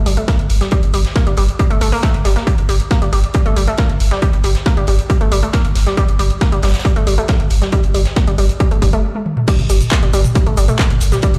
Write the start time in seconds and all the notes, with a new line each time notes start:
0.06 G1 G3, closed hi-hat, open hi-hat
0.17 A3, closed hi-hat
0.28 A#3, kick, snare, closed hi-hat
0.39 G1, closed hi-hat
0.50 G1, closed hi-hat, open hi-hat
0.61 G3, snare, closed hi-hat
0.71 G3, kick, closed hi-hat
0.83 G1, closed hi-hat
0.94 G1 G3, closed hi-hat, open hi-hat
1.05 snare, closed hi-hat
1.16 A#3, kick, snare, closed hi-hat
1.27 G1 G3, closed hi-hat
1.37 G1 G3, closed hi-hat, open hi-hat
1.49 closed hi-hat
1.59 G3, kick, closed hi-hat
1.70 G1 A3, closed hi-hat
1.81 G1 A3, closed hi-hat, open hi-hat
1.92 A#3, closed hi-hat, open hi-hat
2.03 A3, kick, snare, closed hi-hat
2.14 G1, closed hi-hat
2.25 G1 G3, snare, closed hi-hat, open hi-hat
2.36 A#3, snare, closed hi-hat
2.47 G3, kick, closed hi-hat
2.58 G1, closed hi-hat
2.69 G1 G3, closed hi-hat, open hi-hat
2.80 closed hi-hat
2.91 A#3, kick, snare, closed hi-hat
3.02 G1 G3, closed hi-hat
3.13 G1 G3, closed hi-hat, open hi-hat
3.24 closed hi-hat
3.34 G3, kick, closed hi-hat
3.46 G1 A3, closed hi-hat
3.56 G1 G3, closed hi-hat, open hi-hat
3.68 A3, closed hi-hat
3.78 A#3, kick, snare, closed hi-hat
3.89 G1, closed hi-hat
4.00 G1, closed hi-hat, open hi-hat
4.11 G3, snare, closed hi-hat
4.22 G3, kick, closed hi-hat
4.33 G1, closed hi-hat
4.44 G1 G3, closed hi-hat, open hi-hat
4.55 snare, closed hi-hat
4.66 A#3, kick, snare, closed hi-hat
4.77 G1 G3, closed hi-hat
4.87 G1 G3, closed hi-hat, open hi-hat
4.98 closed hi-hat
5.10 G3, kick, closed hi-hat
5.21 G1 A3, closed hi-hat
5.32 G1 G3, closed hi-hat, open hi-hat
5.43 A3, closed hi-hat
5.53 A#3, kick, snare, closed hi-hat
5.65 G1, closed hi-hat
5.75 G1, snare, closed hi-hat, open hi-hat
5.87 G3, snare, closed hi-hat
5.97 G3, kick, closed hi-hat
6.08 G1, closed hi-hat
6.19 G1 G3, closed hi-hat, open hi-hat
6.30 closed hi-hat
6.41 A#3, kick, snare, closed hi-hat
6.52 G1 G3, closed hi-hat
6.63 G1 G3, snare, closed hi-hat, open hi-hat
6.68 snare, closed hi-hat
6.74 snare, closed hi-hat
6.79 snare, closed hi-hat
6.85 G3, kick, closed hi-hat
6.96 G1 A3, closed hi-hat
7.07 G1 G3, closed hi-hat, open hi-hat
7.18 A3, closed hi-hat
7.28 A#3, kick, snare, closed hi-hat
7.40 G1, closed hi-hat
7.50 G1, closed hi-hat, open hi-hat
7.62 G3, snare, closed hi-hat
7.72 G3, kick, closed hi-hat
7.83 G1, closed hi-hat
7.94 G1 G3, closed hi-hat, open hi-hat
8.05 snare, closed hi-hat
8.16 A#3, kick, snare, closed hi-hat
8.27 G1 G3, closed hi-hat
8.38 G1 G3, closed hi-hat, open hi-hat
8.49 closed hi-hat
8.60 G3, kick, closed hi-hat
8.71 G1 A3, closed hi-hat
8.82 G1 G3, kick, closed hi-hat, open hi-hat
8.93 A3, closed hi-hat
9.15 high tom
9.26 mid tom
9.37 mid tom
9.48 G3, kick, closed hi-hat, crash, shaker
9.59 G1, closed hi-hat, mid tom
9.69 G1 G3, closed hi-hat, open hi-hat, shaker
9.81 closed hi-hat, mid tom, shaker
9.91 A#3, kick, snare, clap, closed hi-hat, shaker
10.03 G1 G3, closed hi-hat, mid tom
10.13 G1 G3, closed hi-hat, open hi-hat, shaker
10.25 closed hi-hat, mid tom, shaker
10.35 G3, kick, closed hi-hat, shaker
10.46 G1 A3, closed hi-hat, mid tom
10.57 G1 G3, closed hi-hat, open hi-hat, shaker
10.68 A3, closed hi-hat, mid tom, shaker
10.79 A#3, kick, snare, clap, closed hi-hat, shaker
10.90 G1, closed hi-hat, mid tom
11.01 G1, closed hi-hat, open hi-hat, shaker
11.12 G3, snare, closed hi-hat, mid tom, shaker
11.22 G3, kick, closed hi-hat, shaker
11.34 G1, closed hi-hat, mid tom